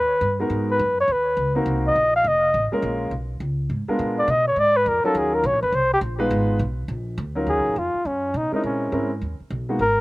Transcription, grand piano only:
0.40 G#3 B3 D#4 F#4 A#4
1.55 A#3 C4 D#4 F#4 A#4
2.72 G#3 A#3 C#4 F4 A#4
3.88 G#3 B3 D4 F4 A#4
5.04 F#3 C#4 D#4 F4 A#4
6.19 G#3 B3 D#4 F4 B4
7.35 F#3 C#4 D#4 F4 A#4
8.52 G#3 C4 C#4 E4 A#4
8.92 G#3 C4 C#4 E4 A#4
9.69 G#3 A#3 B3 D#4 F#4

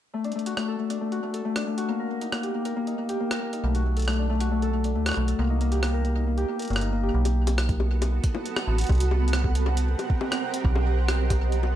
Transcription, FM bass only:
3.64 B1
4.95 D2
5.17 B1
5.39 C2
6.70 G1
7.14 B1
8.68 A1
8.89 C2
10.65 B1

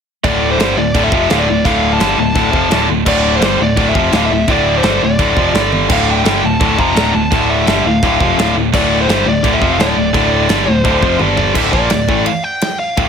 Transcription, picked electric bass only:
0.24 D1
0.59 G1
0.77 D1
0.94 D1
1.12 F1
1.30 D1
1.49 D1
1.65 D1
2.00 G1
2.18 D1
2.35 D1
2.54 F1
2.72 D1
2.90 D1
3.06 D1
3.41 G1
3.59 D1
3.77 D1
3.95 F1
4.12 D1
4.30 D1
4.47 D1
4.83 G1
5.02 D1
5.19 D1
5.37 F1
5.53 G1
5.90 D1
6.25 G1
6.43 D1
6.61 D1
6.78 F1
6.96 D1
7.14 D1
7.32 D1
7.67 G1
7.84 D1
8.02 D1
8.21 F1
8.37 D1
8.55 D1
8.73 D1
9.08 G1
9.26 D1
9.43 D1
9.61 F1
9.79 D1
9.96 D1
10.14 D1
10.50 G1
10.68 D1
10.84 D1
11.03 F1
11.20 G1
11.55 D1
11.73 A#1
11.91 D1
12.08 A1
12.98 D1

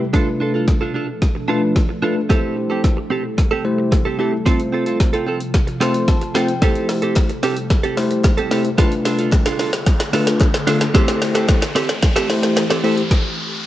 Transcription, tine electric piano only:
0.13 A3 D4 F4 B4
1.49 A3 D4 F4 B4
2.03 A3 D4 F4 B4
2.30 A3 E4 G4 C5
3.65 A3 E4 G4 C5
4.19 A3 E4 G4 A4
4.46 A3 C4 F4 C5
5.81 A3 C4 F4 C5 C6
6.08 A5
6.35 A3 C4 F4 C5 G5
6.62 A3 E4 G4 C5
7.97 A3 E4 G4 C5
8.51 A3 E4 G4 C5
8.78 A3 D4 F4 B4
10.13 A3 D4 F4 B4
10.67 A3 D4 F4 A4
10.94 A3 E4 G4 C5
12.30 A3 E4 G4 C5
12.84 A3 E4 G4 C5

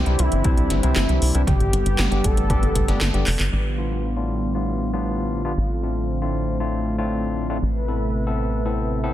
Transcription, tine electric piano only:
0.06 C3 G3 C4 D4 E4
0.45 C3 G3 C4 D4 E4
0.83 C3 G3 C4 D4 E4
1.34 G2 G3 C4 D4 E4
1.73 G2 G3 B3 D4 G4
2.11 G2 G3 B3 D4 G4
2.50 G2 G3 B3 D4 G4
2.88 G2 G3 B3 D4 G4
3.14 G2 G3 B3 D4 G4
3.78 A2 G3 B3 D4 F4
4.17 A2 G3 B3 D4 F4
4.55 A2 G3 B3 D4 F4
4.94 A2 G3 B3 D4 F4
5.45 G3 B3 D4 F4
5.83 A2 A3 C4 D4 F4
6.22 A2 A3 C4 D4 F4
6.60 A2 A3 C4 D4 F4
6.98 A2 A3 C4 D4 F4
7.50 A2 A3 C4 D4 F4
7.88 A2 B3 C4 E4 A4
8.27 A2 B3 C4 E4 A4
8.65 A2 B3 C4 E4 A4
9.04 A2 B3 C4 E4 A4

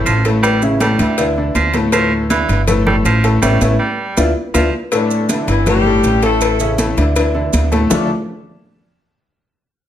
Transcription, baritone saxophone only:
0.05 F3
0.42 G3
0.80 G3
1.55 F3
1.93 F3
2.30 E3
2.86 G3
3.05 F3
3.42 G3
3.79 G3
4.54 F3

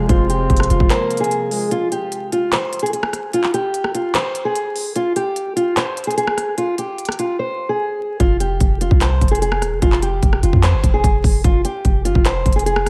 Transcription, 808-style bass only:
0.09 F1
0.50 F1
0.70 F1
0.80 F1
8.20 F1
8.61 F1
8.91 C2
9.21 F1
9.62 D#1
9.72 F1
9.82 F1
10.23 F1
10.43 F1
10.53 F2
10.73 G1
10.84 F1
11.04 F1
11.24 F1
11.44 F1
11.85 F1
12.05 G1
12.15 F1
12.46 F1

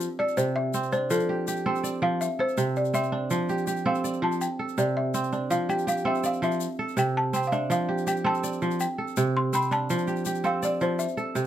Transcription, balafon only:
0.19 D5
0.37 C5
0.56 E5
0.92 C5
1.11 A4
2.03 F5
2.21 E5
2.40 C5
2.77 D5
2.95 E5
3.87 F5
4.24 A5
4.41 G5
4.79 D5
4.97 E5
5.51 F5
5.70 G5
5.88 F5
6.07 E5
6.26 F5
6.44 E5
6.99 G5
7.17 A5
7.36 G5
7.47 F5
7.52 E5
7.71 F5
8.08 G5
8.27 A5
8.81 G5
9.37 C6
9.55 B5
9.72 A5
10.45 F5
10.65 D5
10.82 C5
10.99 E5

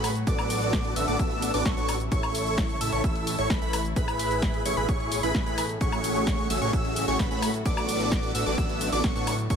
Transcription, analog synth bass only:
Already playing: A2
0.27 A1
0.96 A1
1.08 A1
1.19 A1
1.54 A1
1.66 A1
1.77 A1
2.12 A1
2.81 A1
2.92 A1
3.04 A1
3.39 A1
3.50 A1
3.62 A1
3.96 A1
4.65 A1
4.77 A1
4.89 A1
5.23 A1
5.35 A1
5.46 A2
5.81 A1
6.50 A1
6.62 A1
6.73 A1
7.08 A1
7.19 A1
7.31 A2
7.66 A1
8.35 A1
8.46 A1
8.58 A1
8.92 A1
9.04 A1
9.16 A2
9.50 A1

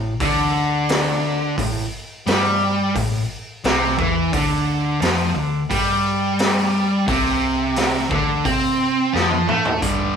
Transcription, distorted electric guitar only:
Already playing: A2
0.20 D3
1.58 A2
2.26 G3
2.95 A2
3.65 C3
3.98 E3
4.33 D3
5.02 F3
5.36 D3
5.70 G3
7.08 C3
8.11 D3
8.45 C4
9.13 F3
9.47 A3
9.82 G2 D3 G3

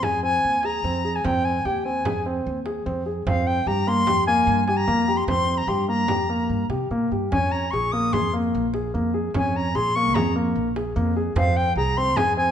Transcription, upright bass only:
0.03 F2
0.44 D#2
0.84 F2
1.25 F2
1.65 D#2
2.06 F2
2.46 D#2
2.86 F2
3.27 F2
3.67 G2
4.07 F2
4.47 G2
4.88 F2
5.28 F2
5.67 G2
6.08 F2
6.49 G2
6.70 C3
6.91 A#2
7.12 G2
7.32 F2
7.73 A#1
8.14 F2
8.55 A#1
8.95 F2
9.35 F2
9.75 A#1
10.15 F2
10.56 A#1
10.96 F2
11.36 F2
11.76 C2
12.16 F2

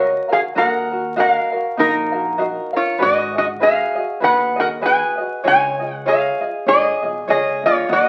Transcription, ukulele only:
Already playing: F#4 A#4 C#5 F5
0.29 F#4 A#4 F5
0.55 F#4 A#4 D#5
0.92 F#4 A#4
1.16 F#4 A#4 D#5 F5
1.52 F#4 A#4 F5
1.77 F#4 A#4 D#5 F5
2.12 F#4 A#4 F5
2.38 F#4 A#4 D#5 F5
2.73 A#4 F5
2.98 F#4 G#4 B4 D#5
3.35 F#4 G#4 D#5
3.60 F#4 G#4 B4 D#5
3.95 F#4 G#4 D#5
4.20 F#4 G#4 B4 D#5
4.56 F#4 G#4 D#5
4.81 F#4 G#4 B4 D#5
5.18 F#4 G#4 D#5
5.44 F4 G#4 C#5 D#5
5.80 F4 G#4 D#5
6.06 F4 G#4 C#5 D#5
6.41 F4 G#4 D#5
6.66 F4 G#4 C#5 D#5
7.03 F4 G#4 D#5
7.28 F4 G#4 C#5 D#5
7.64 F4 G#4 D#5
7.89 F#4 A#4 D#5 F#5

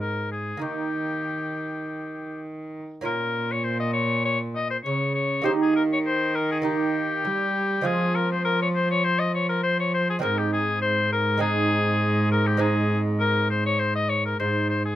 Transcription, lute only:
Already playing: G#2 C4 D#4
0.57 A#3 D#4
0.61 D#3
3.01 A#2 A#3 C#4 F4
4.86 C#3
5.42 D#3 A#3 D#4 G4
6.62 A#3 D#4 G4
7.25 G3
7.81 F3 G#3 C4 F4
10.19 G#2 G#3 C4 D#4
11.38 G#3 C4 D#4
12.57 G#3 C4 D#4
14.40 G#2

